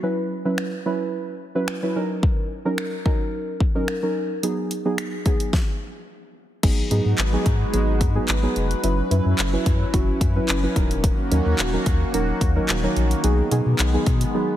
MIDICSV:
0, 0, Header, 1, 5, 480
1, 0, Start_track
1, 0, Key_signature, 5, "major"
1, 0, Tempo, 550459
1, 24, Time_signature, 4, 2, 24, 8
1, 12701, End_track
2, 0, Start_track
2, 0, Title_t, "Synth stab"
2, 0, Program_c, 0, 62
2, 24, Note_on_c, 0, 54, 81
2, 24, Note_on_c, 0, 61, 76
2, 27, Note_on_c, 0, 64, 79
2, 28, Note_on_c, 0, 71, 96
2, 276, Note_off_c, 0, 54, 0
2, 276, Note_off_c, 0, 61, 0
2, 277, Note_off_c, 0, 64, 0
2, 278, Note_off_c, 0, 71, 0
2, 392, Note_on_c, 0, 54, 85
2, 394, Note_on_c, 0, 61, 80
2, 395, Note_on_c, 0, 64, 78
2, 396, Note_on_c, 0, 71, 91
2, 642, Note_off_c, 0, 54, 0
2, 643, Note_off_c, 0, 61, 0
2, 644, Note_off_c, 0, 64, 0
2, 644, Note_off_c, 0, 71, 0
2, 746, Note_on_c, 0, 54, 87
2, 748, Note_on_c, 0, 61, 82
2, 750, Note_on_c, 0, 64, 84
2, 750, Note_on_c, 0, 71, 101
2, 1167, Note_off_c, 0, 54, 0
2, 1168, Note_off_c, 0, 61, 0
2, 1169, Note_off_c, 0, 64, 0
2, 1169, Note_off_c, 0, 71, 0
2, 1352, Note_on_c, 0, 54, 88
2, 1353, Note_on_c, 0, 61, 78
2, 1354, Note_on_c, 0, 64, 80
2, 1356, Note_on_c, 0, 71, 96
2, 1515, Note_off_c, 0, 54, 0
2, 1515, Note_off_c, 0, 61, 0
2, 1516, Note_off_c, 0, 64, 0
2, 1517, Note_off_c, 0, 71, 0
2, 1591, Note_on_c, 0, 54, 85
2, 1593, Note_on_c, 0, 61, 80
2, 1594, Note_on_c, 0, 64, 83
2, 1595, Note_on_c, 0, 71, 99
2, 1696, Note_off_c, 0, 54, 0
2, 1698, Note_off_c, 0, 61, 0
2, 1706, Note_off_c, 0, 64, 0
2, 1706, Note_off_c, 0, 71, 0
2, 1706, Note_on_c, 0, 54, 93
2, 1709, Note_on_c, 0, 61, 80
2, 1710, Note_on_c, 0, 63, 78
2, 1711, Note_on_c, 0, 70, 104
2, 2185, Note_off_c, 0, 54, 0
2, 2187, Note_off_c, 0, 61, 0
2, 2187, Note_off_c, 0, 63, 0
2, 2188, Note_off_c, 0, 70, 0
2, 2312, Note_on_c, 0, 54, 87
2, 2313, Note_on_c, 0, 61, 78
2, 2315, Note_on_c, 0, 63, 81
2, 2316, Note_on_c, 0, 70, 97
2, 2562, Note_off_c, 0, 54, 0
2, 2563, Note_off_c, 0, 61, 0
2, 2564, Note_off_c, 0, 63, 0
2, 2564, Note_off_c, 0, 70, 0
2, 2663, Note_on_c, 0, 54, 91
2, 2664, Note_on_c, 0, 61, 82
2, 2665, Note_on_c, 0, 63, 85
2, 2667, Note_on_c, 0, 70, 101
2, 3086, Note_off_c, 0, 54, 0
2, 3086, Note_off_c, 0, 61, 0
2, 3087, Note_off_c, 0, 63, 0
2, 3088, Note_off_c, 0, 70, 0
2, 3268, Note_on_c, 0, 54, 85
2, 3270, Note_on_c, 0, 61, 80
2, 3272, Note_on_c, 0, 63, 78
2, 3273, Note_on_c, 0, 70, 94
2, 3433, Note_off_c, 0, 54, 0
2, 3434, Note_off_c, 0, 61, 0
2, 3435, Note_off_c, 0, 63, 0
2, 3435, Note_off_c, 0, 70, 0
2, 3510, Note_on_c, 0, 54, 87
2, 3510, Note_on_c, 0, 61, 80
2, 3512, Note_on_c, 0, 63, 82
2, 3513, Note_on_c, 0, 70, 93
2, 3761, Note_off_c, 0, 54, 0
2, 3761, Note_off_c, 0, 61, 0
2, 3762, Note_off_c, 0, 63, 0
2, 3763, Note_off_c, 0, 70, 0
2, 3861, Note_on_c, 0, 54, 82
2, 3864, Note_on_c, 0, 59, 81
2, 3864, Note_on_c, 0, 63, 79
2, 3867, Note_on_c, 0, 68, 96
2, 4115, Note_off_c, 0, 54, 0
2, 4116, Note_off_c, 0, 59, 0
2, 4116, Note_off_c, 0, 63, 0
2, 4117, Note_off_c, 0, 68, 0
2, 4231, Note_on_c, 0, 54, 85
2, 4231, Note_on_c, 0, 59, 77
2, 4233, Note_on_c, 0, 63, 75
2, 4233, Note_on_c, 0, 68, 93
2, 4481, Note_off_c, 0, 54, 0
2, 4482, Note_off_c, 0, 59, 0
2, 4483, Note_off_c, 0, 63, 0
2, 4483, Note_off_c, 0, 68, 0
2, 4580, Note_on_c, 0, 54, 92
2, 4582, Note_on_c, 0, 59, 82
2, 4584, Note_on_c, 0, 63, 84
2, 4586, Note_on_c, 0, 68, 103
2, 4822, Note_off_c, 0, 54, 0
2, 4823, Note_off_c, 0, 59, 0
2, 4824, Note_off_c, 0, 63, 0
2, 4825, Note_off_c, 0, 68, 0
2, 5781, Note_on_c, 0, 54, 81
2, 5783, Note_on_c, 0, 59, 78
2, 5784, Note_on_c, 0, 63, 81
2, 5785, Note_on_c, 0, 68, 95
2, 5955, Note_off_c, 0, 54, 0
2, 5955, Note_off_c, 0, 59, 0
2, 5956, Note_off_c, 0, 63, 0
2, 5956, Note_off_c, 0, 68, 0
2, 6022, Note_on_c, 0, 54, 83
2, 6023, Note_on_c, 0, 59, 79
2, 6025, Note_on_c, 0, 63, 80
2, 6027, Note_on_c, 0, 68, 90
2, 6275, Note_off_c, 0, 54, 0
2, 6276, Note_off_c, 0, 59, 0
2, 6277, Note_off_c, 0, 63, 0
2, 6278, Note_off_c, 0, 68, 0
2, 6389, Note_on_c, 0, 54, 85
2, 6389, Note_on_c, 0, 59, 76
2, 6393, Note_on_c, 0, 63, 82
2, 6394, Note_on_c, 0, 68, 100
2, 6641, Note_off_c, 0, 54, 0
2, 6641, Note_off_c, 0, 59, 0
2, 6643, Note_off_c, 0, 63, 0
2, 6643, Note_off_c, 0, 68, 0
2, 6739, Note_on_c, 0, 54, 90
2, 6742, Note_on_c, 0, 59, 78
2, 6742, Note_on_c, 0, 63, 81
2, 6744, Note_on_c, 0, 68, 100
2, 6994, Note_off_c, 0, 54, 0
2, 6995, Note_off_c, 0, 59, 0
2, 6995, Note_off_c, 0, 63, 0
2, 6996, Note_off_c, 0, 68, 0
2, 7107, Note_on_c, 0, 54, 90
2, 7110, Note_on_c, 0, 59, 80
2, 7110, Note_on_c, 0, 63, 81
2, 7111, Note_on_c, 0, 68, 97
2, 7273, Note_off_c, 0, 54, 0
2, 7274, Note_off_c, 0, 59, 0
2, 7274, Note_off_c, 0, 63, 0
2, 7274, Note_off_c, 0, 68, 0
2, 7348, Note_on_c, 0, 54, 88
2, 7350, Note_on_c, 0, 59, 84
2, 7351, Note_on_c, 0, 63, 83
2, 7352, Note_on_c, 0, 68, 93
2, 7600, Note_off_c, 0, 54, 0
2, 7601, Note_off_c, 0, 59, 0
2, 7602, Note_off_c, 0, 63, 0
2, 7602, Note_off_c, 0, 68, 0
2, 7699, Note_on_c, 0, 54, 87
2, 7701, Note_on_c, 0, 61, 75
2, 7703, Note_on_c, 0, 64, 79
2, 7705, Note_on_c, 0, 71, 95
2, 7873, Note_off_c, 0, 54, 0
2, 7875, Note_off_c, 0, 61, 0
2, 7875, Note_off_c, 0, 64, 0
2, 7877, Note_off_c, 0, 71, 0
2, 7939, Note_on_c, 0, 54, 87
2, 7941, Note_on_c, 0, 61, 80
2, 7942, Note_on_c, 0, 64, 79
2, 7943, Note_on_c, 0, 71, 96
2, 8193, Note_off_c, 0, 54, 0
2, 8195, Note_off_c, 0, 61, 0
2, 8195, Note_off_c, 0, 64, 0
2, 8196, Note_off_c, 0, 71, 0
2, 8310, Note_on_c, 0, 54, 85
2, 8311, Note_on_c, 0, 61, 83
2, 8313, Note_on_c, 0, 64, 77
2, 8314, Note_on_c, 0, 71, 91
2, 8561, Note_off_c, 0, 54, 0
2, 8562, Note_off_c, 0, 61, 0
2, 8563, Note_off_c, 0, 64, 0
2, 8563, Note_off_c, 0, 71, 0
2, 8663, Note_on_c, 0, 54, 88
2, 8665, Note_on_c, 0, 61, 79
2, 8666, Note_on_c, 0, 64, 81
2, 8667, Note_on_c, 0, 66, 98
2, 8916, Note_off_c, 0, 54, 0
2, 8917, Note_off_c, 0, 61, 0
2, 8917, Note_off_c, 0, 64, 0
2, 8917, Note_off_c, 0, 66, 0
2, 9031, Note_on_c, 0, 54, 92
2, 9032, Note_on_c, 0, 61, 80
2, 9033, Note_on_c, 0, 64, 80
2, 9035, Note_on_c, 0, 71, 96
2, 9195, Note_off_c, 0, 54, 0
2, 9195, Note_off_c, 0, 61, 0
2, 9195, Note_off_c, 0, 64, 0
2, 9196, Note_off_c, 0, 71, 0
2, 9268, Note_on_c, 0, 54, 91
2, 9270, Note_on_c, 0, 61, 81
2, 9272, Note_on_c, 0, 64, 80
2, 9273, Note_on_c, 0, 71, 96
2, 9370, Note_off_c, 0, 54, 0
2, 9372, Note_off_c, 0, 61, 0
2, 9381, Note_on_c, 0, 54, 95
2, 9383, Note_on_c, 0, 61, 85
2, 9385, Note_off_c, 0, 64, 0
2, 9385, Note_off_c, 0, 71, 0
2, 9385, Note_on_c, 0, 63, 82
2, 9386, Note_on_c, 0, 70, 98
2, 9772, Note_off_c, 0, 54, 0
2, 9773, Note_off_c, 0, 61, 0
2, 9775, Note_off_c, 0, 63, 0
2, 9775, Note_off_c, 0, 70, 0
2, 9863, Note_on_c, 0, 54, 86
2, 9863, Note_on_c, 0, 61, 81
2, 9864, Note_on_c, 0, 63, 79
2, 9866, Note_on_c, 0, 70, 96
2, 10115, Note_off_c, 0, 54, 0
2, 10116, Note_off_c, 0, 61, 0
2, 10116, Note_off_c, 0, 63, 0
2, 10117, Note_off_c, 0, 70, 0
2, 10228, Note_on_c, 0, 54, 88
2, 10229, Note_on_c, 0, 61, 79
2, 10231, Note_on_c, 0, 63, 83
2, 10232, Note_on_c, 0, 70, 97
2, 10480, Note_off_c, 0, 54, 0
2, 10481, Note_off_c, 0, 61, 0
2, 10482, Note_off_c, 0, 63, 0
2, 10482, Note_off_c, 0, 70, 0
2, 10580, Note_on_c, 0, 54, 89
2, 10581, Note_on_c, 0, 61, 76
2, 10583, Note_on_c, 0, 63, 80
2, 10584, Note_on_c, 0, 70, 95
2, 10834, Note_off_c, 0, 54, 0
2, 10835, Note_off_c, 0, 61, 0
2, 10835, Note_off_c, 0, 63, 0
2, 10836, Note_off_c, 0, 70, 0
2, 10950, Note_on_c, 0, 54, 86
2, 10951, Note_on_c, 0, 61, 81
2, 10952, Note_on_c, 0, 63, 84
2, 10954, Note_on_c, 0, 70, 100
2, 11114, Note_off_c, 0, 54, 0
2, 11114, Note_off_c, 0, 61, 0
2, 11115, Note_off_c, 0, 63, 0
2, 11116, Note_off_c, 0, 70, 0
2, 11190, Note_on_c, 0, 54, 91
2, 11192, Note_on_c, 0, 61, 82
2, 11192, Note_on_c, 0, 63, 78
2, 11194, Note_on_c, 0, 70, 101
2, 11441, Note_off_c, 0, 54, 0
2, 11442, Note_off_c, 0, 61, 0
2, 11442, Note_off_c, 0, 63, 0
2, 11443, Note_off_c, 0, 70, 0
2, 11540, Note_on_c, 0, 54, 89
2, 11543, Note_on_c, 0, 59, 78
2, 11543, Note_on_c, 0, 63, 79
2, 11544, Note_on_c, 0, 68, 95
2, 11714, Note_off_c, 0, 54, 0
2, 11715, Note_off_c, 0, 59, 0
2, 11716, Note_off_c, 0, 63, 0
2, 11716, Note_off_c, 0, 68, 0
2, 11782, Note_on_c, 0, 54, 86
2, 11783, Note_on_c, 0, 59, 78
2, 11785, Note_on_c, 0, 63, 80
2, 11786, Note_on_c, 0, 68, 98
2, 12035, Note_off_c, 0, 54, 0
2, 12036, Note_off_c, 0, 59, 0
2, 12036, Note_off_c, 0, 63, 0
2, 12037, Note_off_c, 0, 68, 0
2, 12150, Note_on_c, 0, 54, 90
2, 12151, Note_on_c, 0, 59, 81
2, 12153, Note_on_c, 0, 63, 81
2, 12155, Note_on_c, 0, 68, 95
2, 12401, Note_off_c, 0, 54, 0
2, 12402, Note_off_c, 0, 59, 0
2, 12403, Note_off_c, 0, 63, 0
2, 12404, Note_off_c, 0, 68, 0
2, 12504, Note_on_c, 0, 54, 89
2, 12505, Note_on_c, 0, 59, 77
2, 12507, Note_on_c, 0, 63, 80
2, 12508, Note_on_c, 0, 68, 95
2, 12701, Note_off_c, 0, 54, 0
2, 12701, Note_off_c, 0, 59, 0
2, 12701, Note_off_c, 0, 63, 0
2, 12701, Note_off_c, 0, 68, 0
2, 12701, End_track
3, 0, Start_track
3, 0, Title_t, "Analog synth pad"
3, 0, Program_c, 1, 89
3, 5787, Note_on_c, 1, 56, 86
3, 5787, Note_on_c, 1, 63, 75
3, 5787, Note_on_c, 1, 66, 78
3, 5787, Note_on_c, 1, 71, 93
3, 7687, Note_off_c, 1, 56, 0
3, 7687, Note_off_c, 1, 63, 0
3, 7687, Note_off_c, 1, 66, 0
3, 7708, Note_on_c, 1, 61, 78
3, 7710, Note_on_c, 1, 54, 81
3, 7710, Note_on_c, 1, 64, 75
3, 9351, Note_off_c, 1, 71, 0
3, 9370, Note_off_c, 1, 54, 0
3, 9370, Note_off_c, 1, 64, 0
3, 9386, Note_on_c, 1, 58, 77
3, 9386, Note_on_c, 1, 66, 95
3, 9387, Note_on_c, 1, 51, 84
3, 11511, Note_off_c, 1, 61, 0
3, 11523, Note_off_c, 1, 66, 0
3, 11524, Note_off_c, 1, 58, 0
3, 11544, Note_on_c, 1, 59, 91
3, 11545, Note_on_c, 1, 56, 76
3, 12701, Note_off_c, 1, 51, 0
3, 12701, Note_off_c, 1, 56, 0
3, 12701, Note_off_c, 1, 59, 0
3, 12701, End_track
4, 0, Start_track
4, 0, Title_t, "Sub bass"
4, 0, Program_c, 2, 38
4, 5785, Note_on_c, 2, 32, 110
4, 5941, Note_off_c, 2, 32, 0
4, 6024, Note_on_c, 2, 44, 102
4, 6107, Note_off_c, 2, 44, 0
4, 6151, Note_on_c, 2, 44, 101
4, 6225, Note_off_c, 2, 44, 0
4, 6264, Note_on_c, 2, 32, 95
4, 6420, Note_off_c, 2, 32, 0
4, 6505, Note_on_c, 2, 44, 104
4, 6661, Note_off_c, 2, 44, 0
4, 6743, Note_on_c, 2, 32, 105
4, 6983, Note_on_c, 2, 44, 94
4, 6996, Note_off_c, 2, 32, 0
4, 7139, Note_off_c, 2, 44, 0
4, 7225, Note_on_c, 2, 32, 92
4, 7381, Note_off_c, 2, 32, 0
4, 7463, Note_on_c, 2, 29, 81
4, 7620, Note_off_c, 2, 29, 0
4, 7703, Note_on_c, 2, 30, 104
4, 7859, Note_off_c, 2, 30, 0
4, 7942, Note_on_c, 2, 42, 100
4, 8026, Note_off_c, 2, 42, 0
4, 8071, Note_on_c, 2, 42, 103
4, 8144, Note_off_c, 2, 42, 0
4, 8184, Note_on_c, 2, 30, 97
4, 8340, Note_off_c, 2, 30, 0
4, 8425, Note_on_c, 2, 42, 98
4, 8581, Note_off_c, 2, 42, 0
4, 8665, Note_on_c, 2, 30, 106
4, 8821, Note_off_c, 2, 30, 0
4, 8903, Note_on_c, 2, 42, 100
4, 9060, Note_off_c, 2, 42, 0
4, 9144, Note_on_c, 2, 30, 93
4, 9300, Note_off_c, 2, 30, 0
4, 9383, Note_on_c, 2, 27, 101
4, 9696, Note_off_c, 2, 27, 0
4, 9864, Note_on_c, 2, 39, 103
4, 9947, Note_off_c, 2, 39, 0
4, 9990, Note_on_c, 2, 39, 95
4, 10064, Note_off_c, 2, 39, 0
4, 10103, Note_on_c, 2, 27, 95
4, 10260, Note_off_c, 2, 27, 0
4, 10344, Note_on_c, 2, 39, 102
4, 10500, Note_off_c, 2, 39, 0
4, 10582, Note_on_c, 2, 27, 104
4, 10739, Note_off_c, 2, 27, 0
4, 10823, Note_on_c, 2, 39, 102
4, 10979, Note_off_c, 2, 39, 0
4, 11063, Note_on_c, 2, 27, 98
4, 11219, Note_off_c, 2, 27, 0
4, 11302, Note_on_c, 2, 34, 83
4, 11459, Note_off_c, 2, 34, 0
4, 11542, Note_on_c, 2, 35, 117
4, 11699, Note_off_c, 2, 35, 0
4, 11783, Note_on_c, 2, 47, 96
4, 11866, Note_off_c, 2, 47, 0
4, 11910, Note_on_c, 2, 47, 102
4, 11984, Note_off_c, 2, 47, 0
4, 12024, Note_on_c, 2, 35, 94
4, 12180, Note_off_c, 2, 35, 0
4, 12265, Note_on_c, 2, 47, 108
4, 12421, Note_off_c, 2, 47, 0
4, 12701, End_track
5, 0, Start_track
5, 0, Title_t, "Drums"
5, 505, Note_on_c, 9, 26, 97
5, 593, Note_off_c, 9, 26, 0
5, 1463, Note_on_c, 9, 26, 99
5, 1551, Note_off_c, 9, 26, 0
5, 1945, Note_on_c, 9, 36, 111
5, 2032, Note_off_c, 9, 36, 0
5, 2424, Note_on_c, 9, 26, 101
5, 2511, Note_off_c, 9, 26, 0
5, 2665, Note_on_c, 9, 36, 87
5, 2752, Note_off_c, 9, 36, 0
5, 3143, Note_on_c, 9, 36, 79
5, 3230, Note_off_c, 9, 36, 0
5, 3384, Note_on_c, 9, 26, 101
5, 3471, Note_off_c, 9, 26, 0
5, 3866, Note_on_c, 9, 42, 100
5, 3953, Note_off_c, 9, 42, 0
5, 4106, Note_on_c, 9, 42, 74
5, 4194, Note_off_c, 9, 42, 0
5, 4344, Note_on_c, 9, 26, 101
5, 4344, Note_on_c, 9, 42, 88
5, 4431, Note_off_c, 9, 26, 0
5, 4432, Note_off_c, 9, 42, 0
5, 4583, Note_on_c, 9, 42, 67
5, 4584, Note_on_c, 9, 36, 86
5, 4670, Note_off_c, 9, 42, 0
5, 4672, Note_off_c, 9, 36, 0
5, 4710, Note_on_c, 9, 42, 67
5, 4797, Note_off_c, 9, 42, 0
5, 4823, Note_on_c, 9, 38, 80
5, 4824, Note_on_c, 9, 36, 101
5, 4910, Note_off_c, 9, 38, 0
5, 4911, Note_off_c, 9, 36, 0
5, 5784, Note_on_c, 9, 36, 109
5, 5784, Note_on_c, 9, 42, 101
5, 5784, Note_on_c, 9, 49, 92
5, 5871, Note_off_c, 9, 36, 0
5, 5871, Note_off_c, 9, 42, 0
5, 5871, Note_off_c, 9, 49, 0
5, 6026, Note_on_c, 9, 42, 77
5, 6113, Note_off_c, 9, 42, 0
5, 6262, Note_on_c, 9, 39, 100
5, 6263, Note_on_c, 9, 42, 91
5, 6350, Note_off_c, 9, 39, 0
5, 6350, Note_off_c, 9, 42, 0
5, 6503, Note_on_c, 9, 42, 66
5, 6505, Note_on_c, 9, 36, 88
5, 6590, Note_off_c, 9, 42, 0
5, 6592, Note_off_c, 9, 36, 0
5, 6745, Note_on_c, 9, 42, 78
5, 6833, Note_off_c, 9, 42, 0
5, 6983, Note_on_c, 9, 36, 82
5, 6983, Note_on_c, 9, 42, 79
5, 7070, Note_off_c, 9, 36, 0
5, 7070, Note_off_c, 9, 42, 0
5, 7223, Note_on_c, 9, 39, 100
5, 7224, Note_on_c, 9, 42, 81
5, 7311, Note_off_c, 9, 39, 0
5, 7311, Note_off_c, 9, 42, 0
5, 7465, Note_on_c, 9, 42, 62
5, 7552, Note_off_c, 9, 42, 0
5, 7593, Note_on_c, 9, 42, 54
5, 7681, Note_off_c, 9, 42, 0
5, 7705, Note_on_c, 9, 42, 101
5, 7792, Note_off_c, 9, 42, 0
5, 7947, Note_on_c, 9, 42, 74
5, 8034, Note_off_c, 9, 42, 0
5, 8185, Note_on_c, 9, 39, 103
5, 8185, Note_on_c, 9, 42, 85
5, 8272, Note_off_c, 9, 39, 0
5, 8272, Note_off_c, 9, 42, 0
5, 8425, Note_on_c, 9, 36, 94
5, 8425, Note_on_c, 9, 42, 68
5, 8512, Note_off_c, 9, 36, 0
5, 8512, Note_off_c, 9, 42, 0
5, 8665, Note_on_c, 9, 36, 85
5, 8666, Note_on_c, 9, 42, 81
5, 8752, Note_off_c, 9, 36, 0
5, 8753, Note_off_c, 9, 42, 0
5, 8903, Note_on_c, 9, 36, 82
5, 8905, Note_on_c, 9, 42, 78
5, 8990, Note_off_c, 9, 36, 0
5, 8992, Note_off_c, 9, 42, 0
5, 9144, Note_on_c, 9, 39, 103
5, 9145, Note_on_c, 9, 42, 82
5, 9231, Note_off_c, 9, 39, 0
5, 9232, Note_off_c, 9, 42, 0
5, 9383, Note_on_c, 9, 36, 87
5, 9384, Note_on_c, 9, 42, 64
5, 9471, Note_off_c, 9, 36, 0
5, 9471, Note_off_c, 9, 42, 0
5, 9513, Note_on_c, 9, 42, 55
5, 9600, Note_off_c, 9, 42, 0
5, 9625, Note_on_c, 9, 36, 110
5, 9625, Note_on_c, 9, 42, 109
5, 9712, Note_off_c, 9, 36, 0
5, 9713, Note_off_c, 9, 42, 0
5, 9867, Note_on_c, 9, 42, 78
5, 9954, Note_off_c, 9, 42, 0
5, 10104, Note_on_c, 9, 39, 104
5, 10105, Note_on_c, 9, 42, 87
5, 10191, Note_off_c, 9, 39, 0
5, 10192, Note_off_c, 9, 42, 0
5, 10343, Note_on_c, 9, 42, 68
5, 10345, Note_on_c, 9, 36, 91
5, 10431, Note_off_c, 9, 42, 0
5, 10432, Note_off_c, 9, 36, 0
5, 10586, Note_on_c, 9, 42, 83
5, 10673, Note_off_c, 9, 42, 0
5, 10822, Note_on_c, 9, 36, 84
5, 10824, Note_on_c, 9, 42, 81
5, 10910, Note_off_c, 9, 36, 0
5, 10911, Note_off_c, 9, 42, 0
5, 11063, Note_on_c, 9, 39, 100
5, 11064, Note_on_c, 9, 42, 83
5, 11150, Note_off_c, 9, 39, 0
5, 11151, Note_off_c, 9, 42, 0
5, 11305, Note_on_c, 9, 42, 63
5, 11393, Note_off_c, 9, 42, 0
5, 11432, Note_on_c, 9, 42, 55
5, 11519, Note_off_c, 9, 42, 0
5, 11543, Note_on_c, 9, 42, 107
5, 11631, Note_off_c, 9, 42, 0
5, 11785, Note_on_c, 9, 42, 79
5, 11872, Note_off_c, 9, 42, 0
5, 12024, Note_on_c, 9, 39, 100
5, 12024, Note_on_c, 9, 42, 94
5, 12111, Note_off_c, 9, 39, 0
5, 12111, Note_off_c, 9, 42, 0
5, 12264, Note_on_c, 9, 42, 69
5, 12265, Note_on_c, 9, 36, 95
5, 12351, Note_off_c, 9, 42, 0
5, 12352, Note_off_c, 9, 36, 0
5, 12391, Note_on_c, 9, 42, 66
5, 12478, Note_off_c, 9, 42, 0
5, 12701, End_track
0, 0, End_of_file